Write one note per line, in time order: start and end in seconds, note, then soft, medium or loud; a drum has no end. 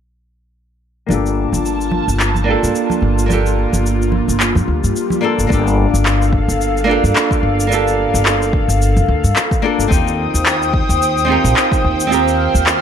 1.06 1.44 G1 medium
1.06 2.43 A#3 medium
1.06 5.46 A#3 medium
1.06 2.44 D4 medium
1.06 2.45 F4 medium
1.06 high conga medium
1.11 5.47 F4 medium
1.11 2.45 G4 medium
1.11 2.46 A4 medium
1.11 3.28 A5 medium
1.11 shaker soft
1.26 shaker soft
1.52 1.99 G1 medium
1.52 high conga soft
1.52 shaker medium
1.66 shaker soft
1.81 shaker soft
1.91 high conga medium
2.08 2.54 G1 medium
2.08 shaker medium
2.20 clap medium
2.20 shaker soft
2.35 high conga medium
2.35 shaker soft
2.44 3.25 A#3 medium
2.44 3.26 D4 medium
2.44 3.27 F4 medium
2.49 3.28 G4 medium
2.49 3.29 A4 medium
2.63 2.71 G2 medium
2.63 shaker medium
2.75 shaker soft
2.90 high conga medium
2.90 shaker soft
3.02 3.64 G1 medium
3.19 shaker medium
3.26 5.18 A#3 medium
3.26 5.19 D4 medium
3.26 5.20 F4 medium
3.26 high conga medium
3.31 5.21 G4 medium
3.31 5.21 A4 medium
3.31 shaker soft
3.46 shaker soft
3.73 4.19 G1 medium
3.73 high conga medium
3.73 shaker medium
3.86 shaker soft
4.02 shaker soft
4.12 high conga medium
4.28 4.57 G1 medium
4.28 shaker medium
4.40 clap medium
4.40 swell medium
4.40 shaker soft
4.55 4.63 G2 medium
4.55 high conga medium
4.55 shaker soft
4.68 4.78 D2 medium
4.84 4.91 G2 medium
4.84 shaker medium
4.96 shaker medium
5.10 high conga medium
5.10 shaker soft
5.21 5.46 A#3 medium
5.21 5.47 D4 medium
5.21 5.47 F4 medium
5.21 5.48 A4 medium
5.39 5.46 G1 medium
5.39 shaker medium
5.47 5.85 G1 medium
5.47 6.83 A#3 medium
5.47 6.84 D4 medium
5.47 6.85 F4 medium
5.47 9.87 A4 medium
5.47 9.86 F5 medium
5.47 kick loud
5.52 6.86 G4 medium
5.52 6.87 A4 medium
5.52 shaker soft
5.67 shaker soft
5.94 6.40 G1 medium
5.94 shaker medium
6.06 clap medium
6.06 shaker soft
6.22 shaker soft
6.33 kick medium
6.48 6.95 G1 medium
6.48 shaker medium
6.61 shaker medium
6.77 shaker soft
6.84 7.66 A#3 medium
6.84 7.66 D4 medium
6.84 7.67 F4 medium
6.89 7.68 G4 medium
6.89 7.69 A4 medium
7.04 7.11 G2 medium
7.04 shaker medium
7.16 clap loud
7.16 shaker medium
7.31 kick loud
7.31 shaker soft
7.43 8.05 G1 medium
7.60 shaker medium
7.67 9.58 A#3 medium
7.67 9.59 D4 medium
7.67 9.60 F4 medium
7.72 9.61 G4 medium
7.72 9.62 A4 medium
7.72 shaker medium
7.88 shaker soft
8.14 8.60 G1 medium
8.14 shaker medium
8.26 clap medium
8.26 shaker soft
8.42 shaker soft
8.53 kick loud
8.68 8.98 G1 medium
8.68 shaker medium
8.82 shaker medium
8.96 9.04 G2 medium
8.96 shaker soft
9.08 9.18 D2 medium
9.24 9.31 G2 medium
9.24 shaker medium
9.36 clap loud
9.36 shaker medium
9.51 kick loud
9.51 shaker soft
9.62 9.87 A#3 medium
9.62 9.87 D4 medium
9.62 9.88 F4 medium
9.62 9.89 A4 loud
9.79 9.86 G1 medium
9.79 shaker medium
9.88 10.25 D#2 loud
9.88 11.24 C4 medium
9.88 11.25 D#4 medium
9.88 11.25 F4 medium
9.88 12.81 C5 medium
9.88 12.81 G5 medium
9.88 12.09 D#6 medium
9.88 kick loud
9.92 11.27 G4 medium
9.92 11.27 A#4 medium
9.92 shaker medium
10.08 shaker soft
10.34 10.80 D#2 medium
10.34 shaker medium
10.46 clap medium
10.46 shaker medium
10.62 shaker soft
10.73 kick loud
10.89 11.35 D#2 medium
10.89 shaker medium
11.02 shaker medium
11.18 shaker soft
11.25 12.06 C4 medium
11.25 12.06 D#4 medium
11.25 12.08 F4 medium
11.30 12.09 G4 medium
11.30 12.10 A#4 loud
11.44 11.52 A#1 medium
11.44 shaker medium
11.57 clap medium
11.57 shaker medium
11.72 kick loud
11.72 shaker soft
11.84 12.46 D#2 medium
12.00 shaker medium
12.07 12.81 C4 medium
12.07 12.81 F4 medium
12.11 12.81 G4 medium
12.11 12.81 A#4 medium
12.11 12.81 F6 medium
12.11 shaker medium
12.28 shaker soft
12.55 12.81 D#2 medium
12.55 shaker medium
12.66 clap medium
12.66 shaker soft